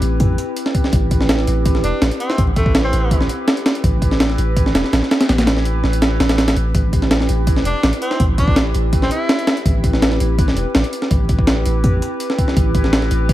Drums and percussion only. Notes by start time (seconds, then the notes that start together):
0.02 closed hi-hat
0.20 kick, closed hi-hat
0.38 closed hi-hat
0.57 closed hi-hat
0.66 snare
0.75 kick, closed hi-hat
0.84 snare
0.93 kick, closed hi-hat
1.11 kick, closed hi-hat
1.21 snare
1.29 snare, closed hi-hat
1.39 snare
1.47 closed hi-hat
1.65 kick, closed hi-hat
1.75 snare
1.84 closed hi-hat
2.02 snare, closed hi-hat
2.11 closed hi-hat
2.20 closed hi-hat
2.30 snare
2.38 kick, closed hi-hat
2.56 kick, closed hi-hat
2.66 kick
2.75 snare, closed hi-hat
2.93 closed hi-hat
3.11 kick, closed hi-hat
3.21 snare
3.29 closed hi-hat
3.48 snare, closed hi-hat
3.57 closed hi-hat
3.66 snare, closed hi-hat
3.75 closed hi-hat
3.84 kick, closed hi-hat
4.02 kick, closed hi-hat
4.11 snare
4.20 snare, closed hi-hat
4.30 snare
4.38 closed hi-hat
4.57 kick, closed hi-hat
4.66 snare
4.75 snare, closed hi-hat
4.84 snare
4.93 snare, closed hi-hat
5.03 snare
5.11 snare, closed hi-hat
5.21 snare, closed hi-hat
5.29 snare, closed hi-hat
5.38 snare, closed hi-hat
5.47 snare, closed hi-hat
5.57 snare
5.65 closed hi-hat
5.84 snare
5.93 closed hi-hat
6.02 snare, closed hi-hat
6.20 snare, closed hi-hat
6.29 snare, closed hi-hat
6.38 snare, closed hi-hat
6.48 snare, closed hi-hat
6.56 closed hi-hat
6.75 kick, closed hi-hat
6.93 kick, closed hi-hat
7.02 snare
7.11 snare, closed hi-hat
7.20 snare
7.29 closed hi-hat
7.47 kick, closed hi-hat
7.57 snare
7.65 closed hi-hat
7.83 snare, closed hi-hat
7.93 closed hi-hat
8.02 closed hi-hat
8.11 snare
8.20 kick, closed hi-hat
8.38 kick, closed hi-hat
8.48 kick
8.56 snare, closed hi-hat
8.74 closed hi-hat
8.93 kick, closed hi-hat
9.02 snare
9.11 closed hi-hat
9.29 snare, closed hi-hat
9.39 closed hi-hat
9.47 snare, closed hi-hat
9.57 closed hi-hat
9.66 kick, closed hi-hat
9.84 kick, closed hi-hat
9.93 snare
10.02 snare, closed hi-hat
10.12 snare
10.20 closed hi-hat
10.38 kick, closed hi-hat
10.48 snare
10.57 closed hi-hat
10.75 snare, closed hi-hat
10.84 closed hi-hat
10.93 closed hi-hat
11.02 snare
11.11 kick, closed hi-hat
11.29 kick, closed hi-hat
11.39 kick
11.47 snare, closed hi-hat
11.66 closed hi-hat
11.84 kick, closed hi-hat
12.02 closed hi-hat
12.20 closed hi-hat
12.30 snare
12.38 kick, closed hi-hat
12.48 snare
12.57 kick, closed hi-hat
12.75 kick, closed hi-hat
12.84 snare
12.93 snare, closed hi-hat
13.02 snare
13.11 closed hi-hat
13.29 kick, closed hi-hat